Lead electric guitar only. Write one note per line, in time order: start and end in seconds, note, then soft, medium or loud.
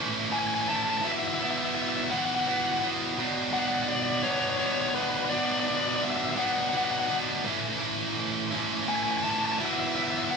0.32 0.39 G#5 loud
0.39 0.46 G#5 medium
0.47 0.54 G#5 medium
0.55 0.61 G#5 medium
0.62 0.68 G#5 medium
0.69 0.76 A5 loud
0.76 0.83 A5 medium
0.83 0.89 A5 loud
0.90 0.97 A5 medium
0.98 1.05 A5 medium
1.04 1.11 E5 loud
1.12 1.19 E5 medium
1.19 1.27 E5 loud
1.28 1.34 E5 medium
1.35 1.42 E5 loud
1.43 1.50 E5 medium
1.51 1.58 E5 loud
1.58 1.65 E5 medium
1.65 1.73 E5 medium
1.75 1.82 E5 medium
1.82 1.89 E5 medium
1.89 1.96 E5 medium
1.96 2.04 E5 medium
2.04 2.10 E5 medium
2.11 2.18 F#5 medium
2.18 2.25 F#5 medium
2.25 2.33 F#5 medium
2.35 2.40 F#5 medium
2.40 2.48 F#5 medium
2.48 2.56 F#5 medium
2.57 2.64 F#5 medium
2.64 2.71 F#5 medium
2.72 2.79 F#5 medium
2.79 2.87 F#5 medium
3.53 3.59 F#5 loud
3.59 3.67 F#5 medium
3.68 3.74 F#5 loud
3.75 3.82 F#5 medium
3.83 3.90 F#5 medium
3.88 3.95 D5 loud
3.95 4.02 D5 medium
4.03 4.09 D5 medium
4.10 4.17 D5 medium
4.18 4.23 D5 medium
4.23 4.31 C#5 medium
4.31 4.40 C#5 medium
4.40 4.49 C#5 medium
4.50 4.58 C#5 medium
4.58 4.65 C#5 loud
4.66 4.72 C#5 medium
4.73 4.80 C#5 medium
4.81 4.88 C#5 medium
4.89 4.95 C#5 medium
4.95 5.02 B4 medium
5.02 5.10 B4 medium
5.10 5.16 B4 medium
5.17 5.24 B4 medium
5.25 5.30 B4 medium
5.30 5.38 D5 loud
5.38 5.45 D5 medium
5.45 5.52 D5 loud
5.52 5.60 D5 medium
5.60 5.67 D5 loud
5.67 5.74 D5 medium
5.75 5.81 D5 medium
5.81 5.88 D5 medium
5.89 5.96 D5 loud
5.96 6.03 D5 medium
6.03 6.10 E5 medium
6.10 6.16 E5 medium
6.16 6.24 E5 medium
6.25 6.31 E5 medium
6.31 6.38 E5 medium
6.38 6.45 F#5 loud
6.46 6.52 F#5 medium
6.53 6.60 F#5 medium
6.61 6.68 F#5 medium
6.69 6.76 F#5 medium
6.77 6.84 F#5 medium
6.85 6.90 F#5 medium
6.91 6.98 F#5 medium
7.00 7.06 F#5 medium
7.07 7.14 F#5 medium
8.88 8.95 G#5 loud
8.96 9.03 G#5 medium
9.03 9.10 G#5 loud
9.11 9.17 G#5 medium
9.18 9.23 G#5 medium
9.23 9.30 A5 loud
9.31 9.38 A5 medium
9.39 9.46 A5 loud
9.46 9.52 A5 medium
9.52 9.60 A5 medium
9.58 9.65 E5 loud
9.66 9.73 E5 medium
9.73 9.79 E5 loud
9.80 9.87 E5 medium
9.88 9.95 E5 loud
9.96 10.03 E5 medium
10.03 10.10 E5 loud
10.10 10.18 E5 medium
10.18 10.24 E5 loud
10.25 10.30 E5 medium
10.30 10.37 F#5 loud